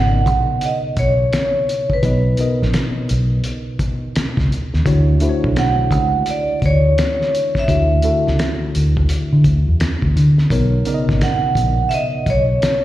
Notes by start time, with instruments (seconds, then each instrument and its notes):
Already playing: fingered electric bass G#1, tine electric piano B2 C#3 B3 D#4 A#4 C#5 D5 D#5, vibraphone F#5
0.26 fingered electric bass A#1, kick, closed hi-hat
0.61 vibraphone D#5, closed hi-hat
0.97 fingered electric bass B1, vibraphone C#5, kick, closed hi-hat
1.33 finger snap, snare, closed hi-hat
1.69 closed hi-hat
1.90 vibraphone B4, kick
2.03 fingered electric bass B1, tine electric piano B2 B3 D#4 B4 D#5, kick, closed hi-hat
2.37 tine electric piano B2 B3 D#4 A#4 D#5, closed hi-hat
2.62 fingered electric bass A#1, snare
2.74 finger snap, snare, closed hi-hat
3.09 fingered electric bass B1, closed hi-hat
3.44 closed hi-hat
3.79 kick, closed hi-hat
4.16 finger snap, muted fingered electric bass stroke, snare, closed hi-hat
4.37 fingered electric bass C#2, kick, snare
4.52 closed hi-hat
4.74 fingered electric bass D#2, snare
4.85 fingered electric bass D2, tine electric piano D3 A3 E4 F#4 C#5, kick, closed hi-hat
5.20 tine electric piano A3 D4 E4 F#4 C5, closed hi-hat
5.29 tine electric piano C#5
5.44 fingered electric bass B1, kick
5.56 vibraphone F#5, finger snap, snare, closed hi-hat
5.91 fingered electric bass C#2, kick, closed hi-hat
6.26 closed hi-hat
6.30 vibraphone D5
6.60 fingered electric bass D2, vibraphone D5, kick, closed hi-hat
6.66 vibraphone C#5
6.98 finger snap, snare, closed hi-hat
7.22 snare
7.35 closed hi-hat
7.55 kick, snare
7.59 vibraphone E5
7.68 fingered electric bass D2, tine electric piano D3 A3 E4 F#4 E5, kick, closed hi-hat
8.02 tine electric piano D3 A3 E4 F#4 A4, closed hi-hat
8.27 fingered electric bass C#2, snare
8.39 finger snap, snare, closed hi-hat
8.75 fingered electric bass D2, closed hi-hat
8.97 kick
9.09 closed hi-hat
9.33 fingered electric bass D3
9.44 fingered electric bass D2, kick, closed hi-hat
9.68 fingered electric bass E2
9.80 finger snap, muted fingered electric bass stroke, snare, closed hi-hat
10.02 fingered electric bass D2, kick
10.16 fingered electric bass D3, closed hi-hat
10.38 snare
10.50 fingered electric bass B1, tine electric piano B2 B3 D#4 A#4 C#5, kick, closed hi-hat
10.85 tine electric piano C#3 B3 D#4 A#4 D5, closed hi-hat
10.94 tine electric piano D#5
11.09 fingered electric bass G#1, kick, snare
11.21 vibraphone F#5, finger snap, snare, closed hi-hat
11.55 fingered electric bass A#1, kick, closed hi-hat
11.89 vibraphone E5, closed hi-hat
11.94 vibraphone D#5
12.26 fingered electric bass B1, vibraphone C#5, kick, closed hi-hat
12.62 finger snap, snare, closed hi-hat